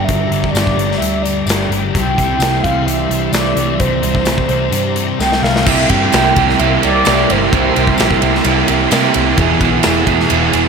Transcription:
Already playing: G2 D3 G3 A#3 D4 G4 D5 A#5
0.04 G2 E5
0.09 G1 D3 G3, kick, closed hi-hat
0.30 G1 D3 G3, closed hi-hat
0.44 kick
0.51 G1 G2 D3 G3 D5, tambourine
0.56 snare, closed hi-hat
0.67 kick
0.76 G1 D3 G3, closed hi-hat
0.91 snare
0.97 D2 G2 E5
1.02 D3 G3, closed hi-hat
1.23 D3 G3 D5, closed hi-hat
1.46 G1 G2 D3 G3, closed hi-hat, tambourine
1.50 snare
1.69 G1 D3 G3, closed hi-hat
1.93 C2 C3 E3 G3 C4 E4 G4 E5 G5 C6, kick, closed hi-hat
2.16 C2 G3 C4, kick, closed hi-hat
2.39 C2 C3 G3 C4, snare, closed hi-hat, tambourine
2.63 C2 G3 C4 F5, kick, closed hi-hat
2.85 C2 C3 G3 C4 E5, closed hi-hat
3.09 C2 G3 C4, closed hi-hat
3.32 C2 C3 G3 C4 D5, snare, closed hi-hat, tambourine
3.56 C2 G3 C4, closed hi-hat
3.78 C2 C3 G3 C5 A#5, kick, closed hi-hat
3.82 C4
4.02 C2 G3 C4, closed hi-hat
4.15 kick
4.25 C2 C3 G3 C4, snare, closed hi-hat, tambourine
4.38 kick
4.48 C2 G3 C4, closed hi-hat
4.71 G2 C3 G3 C4, closed hi-hat
4.96 G3 C4, closed hi-hat
5.19 C2 C3 G3 C4 G5, snare, tambourine
5.32 snare
5.42 C2 C4 F5, snare
5.47 G3
5.56 snare
5.66 C2 C3 G3 A#3 C4 E4 G4 A#4 E5 C6, kick, crash
5.88 G2 A#3 E4 G4 G5, kick, ride
6.12 C2 C3 G3 A#3 E4 G4, snare, ride, tambourine
6.17 C4
6.36 C2 C3 G3 A#3 E4 G4, kick, ride
6.49 snare
6.59 C2 C3 G3 A#3 C4 E4 G4 E5, ride
6.82 C2 A#3 C4 E4 G4 D5, ride
6.86 G3
7.05 C2 C3 G3 A#3 E4 G4, snare, ride, tambourine
7.09 C4
7.29 G1 G3 A#3 C4 E4 G4 C5, ride
7.52 C2 C3 G3 A#3 E4 G4 C5, kick, ride
7.56 C4
7.76 C2 A#3 E4 G4, ride
7.87 kick
7.97 A#1 C3 G3 A#3 C4 E4 G4, snare, ride, tambourine
8.11 kick
8.21 C2 C3 G3 A#3 E4 G4, ride
8.35 snare
8.44 C2 C3 G3 A#3 C4 E4 G4, ride
8.67 C2 G3 A#3 C4 E4 G4, ride
8.90 C3 G3 A#3 C4 E4 G4, snare, ride, tambourine
9.13 C2 G3 C4 E4 G4, ride
9.18 A#3
9.36 E1 E2 B2 E3 G#4 E5 D#6, kick, ride
9.40 B3 E4 G#4
9.61 B1 B3 E4 G#4, kick, ride
9.65 E3
9.83 E1 E2 B2 E3 B3 E4, snare, ride, tambourine
9.87 G#4
10.06 E1 E2 B2 E3 B3 E4 G#4, kick, ride
10.20 snare
10.29 E1 E2 B2 E3 B3 E4 G#4, ride
10.52 E1 B2 E3 B3 E4 G#4, ride

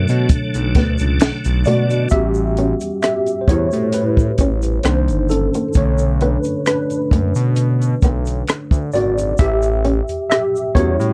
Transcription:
Already playing: B2 D3 F#3 A3 D4 A4 C#5
0.08 B2, closed hi-hat, shaker
0.29 kick, closed hi-hat, shaker
0.54 B1, closed hi-hat, shaker
0.75 D2 B3, kick, snare, closed hi-hat
0.98 C#2, closed hi-hat, shaker
1.20 finger snap, snare, closed hi-hat, shaker
1.45 B1, closed hi-hat, shaker
1.65 B2 A3 F#4 D5, closed hi-hat, shaker
1.90 closed hi-hat, shaker
2.09 A1 G3 B3 C#4 F#4 E5, kick, closed hi-hat, shaker
2.13 G4
2.34 shaker
2.57 C#4, closed hi-hat
2.81 E2, closed hi-hat, shaker
3.02 G4 E5, finger snap, cross-stick, closed hi-hat, shaker
3.26 closed hi-hat, shaker
3.41 C5
3.48 E2 B3 E4 C#5, kick, cross-stick, closed hi-hat
3.72 A2, closed hi-hat, shaker
3.92 E4 B4, closed hi-hat, shaker
4.17 kick, shaker
4.38 A1 C#4, kick, closed hi-hat, shaker
4.62 closed hi-hat, shaker
4.83 C2 D#3 A#3 C4 D4 D#4 C5, finger snap, cross-stick, closed hi-hat, shaker
5.08 G1, closed hi-hat, shaker
5.29 C#4 A4, muted nylon-string guitar stroke, closed hi-hat, shaker
5.54 A#3, closed hi-hat, shaker
5.74 B1 D3 A3 C#5, kick, closed hi-hat, shaker
5.98 closed hi-hat, shaker
6.21 B3 D4 B4, closed hi-hat
6.44 F#2, closed hi-hat, shaker
6.66 D4 B4, finger snap, cross-stick, closed hi-hat, shaker
6.90 closed hi-hat, shaker
7.11 F#2 A3, kick, closed hi-hat
7.35 B2, closed hi-hat, shaker
7.56 closed hi-hat, shaker
7.82 closed hi-hat, shaker
8.02 B1 B3, kick, cross-stick, closed hi-hat, shaker
8.26 closed hi-hat, shaker
8.47 finger snap, cross-stick, closed hi-hat, shaker
8.71 D2, kick, closed hi-hat, shaker
8.92 G#1 D4 F#4 D5, closed hi-hat, shaker
9.18 closed hi-hat, shaker
9.38 A1 G4 E5, kick, closed hi-hat, shaker
9.62 closed hi-hat, shaker
9.85 C#4, closed hi-hat
10.08 E2, closed hi-hat, shaker
10.30 G4 E5, finger snap, cross-stick, closed hi-hat, shaker
10.56 shaker
10.75 E2 G3 B3 C#4 E4 F#4 C#5, kick, cross-stick, closed hi-hat
11.00 A2, closed hi-hat, shaker

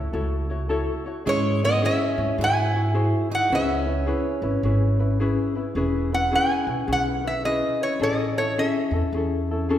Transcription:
Already playing: A3 E4 F#4 C#5
0.13 C#2 E4 F#4 A4 C#5
0.50 E4 F#4 C#5
0.69 E4 F#4 A4 C#5
1.06 E4 F#4 C#5
1.25 G#2 G#3 C#4 E4 G#4 C#5
1.63 B3 C#4 E4 C#5 D#5
1.82 C#4 E4 G#4 C#5 E5
2.17 G#2 C#4 E4 C#5
2.38 G#2 E4 F#4 G#4 C5
2.44 G#5
2.74 E4 F#4 C5
2.94 E4 F#4 G#4 C5
3.30 D#4 E4 F#4 C5
3.35 F#5
3.50 C#2 C#4 E4 G#4 B4
3.55 E5
3.86 C#4 E4 B4
4.06 C#4 E4 G#4 B4
4.42 G#1 C#4 E4 B4
4.63 G#1 C#4 E4 G#4 B4
4.99 C#4 E4 B4
5.20 C#4 E4 G#4 B4
5.55 C#4 E4 B4
5.75 E1 C#4 E4 G#4 B4
6.12 C#4 E4 B4 F#5
6.31 C#4 E4 G#4 B4
6.35 G#5
6.67 B1 C#4 E4 B4
6.87 B1 C#4 E4 G#4 B4
6.93 F#5
7.24 C#4 E4 B4 E5
7.45 C#4 E4 G#4 B4 D#5
7.81 C#4 E4 B4 C#5
8.00 A1 C#4 E4 G#4 A4 D#5
8.37 C#4 E4 A4 C#5
8.58 C#4 E4 G#4 A4 E5
8.91 E2 A4
8.95 C#4 E4
9.12 E2 C#4 E4 G#4
9.17 A4
9.51 C#4 E4 A4
9.69 C#4 E4 G#4 A4

